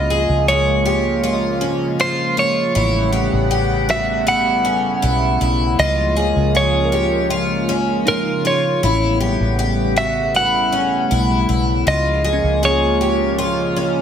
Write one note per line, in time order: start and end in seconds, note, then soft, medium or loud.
0.00 0.26 C#2 loud
0.00 14.02 C#3 medium
0.00 2.73 F3 medium
0.00 2.73 G#3 medium
0.00 2.73 A#3 medium
0.00 2.73 F4 medium
0.00 0.48 D#5 loud
0.10 0.47 G#4 medium
0.29 2.72 C#2 loud
0.48 0.85 G#4 medium
0.48 1.96 C#5 loud
0.86 1.23 G4 medium
1.24 1.61 F4 medium
1.33 3.09 D#5 soft
1.61 1.99 C#4 medium
2.00 2.36 F4 medium
2.00 2.39 C5 loud
2.37 2.75 F4 medium
2.37 3.90 C#5 loud
2.75 3.30 A1 loud
2.75 5.76 G3 medium
2.75 5.76 A3 medium
2.75 5.76 B3 medium
2.75 3.12 E4 medium
2.75 5.76 F#5 medium
3.12 3.50 G4 medium
3.33 5.00 A1 loud
3.51 3.88 G4 medium
3.89 4.26 F#4 medium
3.89 4.28 E5 loud
4.27 4.65 E4 medium
4.27 5.79 F#5 loud
4.65 5.03 C#4 medium
5.02 5.39 B1 medium
5.02 5.40 E4 medium
5.41 5.77 B1 medium
5.41 5.79 E4 medium
5.79 6.33 C#2 loud
5.79 8.80 F3 medium
5.79 8.80 G#3 medium
5.79 8.80 A#3 medium
5.79 6.16 F4 medium
5.79 8.80 F4 medium
5.79 6.58 D#5 loud
6.15 6.54 G#4 medium
6.15 8.43 C#5 medium
6.36 8.79 C#2 loud
6.55 6.92 G#4 medium
6.55 8.04 C#5 loud
6.84 9.11 A#4 medium
6.92 7.30 G4 medium
7.30 7.69 F4 medium
7.69 8.07 C#4 medium
8.05 9.17 D#4 medium
8.05 8.44 F4 medium
8.05 8.46 A#4 loud
8.45 8.83 F4 medium
8.45 10.02 C#5 medium
8.83 9.37 A1 loud
8.83 11.84 G3 medium
8.83 11.84 A3 medium
8.83 11.84 B3 medium
8.83 9.20 E4 medium
8.83 11.84 F#5 medium
9.20 9.58 G4 medium
9.40 11.07 A1 medium
9.59 9.96 G4 medium
9.96 10.34 F#4 medium
9.96 10.36 E5 loud
10.35 10.73 E4 medium
10.35 11.88 F#5 loud
10.72 11.11 C#4 medium
11.11 11.47 B1 medium
11.11 11.48 E4 medium
11.49 11.85 B1 medium
11.49 11.86 E4 medium
11.86 12.41 C#2 loud
11.86 14.02 F3 medium
11.86 14.02 G#3 medium
11.86 14.02 A#3 medium
11.86 14.02 F4 medium
11.86 12.24 F4 medium
11.86 12.65 D#5 loud
12.24 12.62 G#4 medium
12.33 14.02 C#4 medium
12.44 14.02 C#2 medium
12.63 13.01 G#4 medium
12.63 14.02 C#5 medium
13.01 13.38 G4 medium
13.39 13.77 F4 medium
13.76 14.02 C#4 medium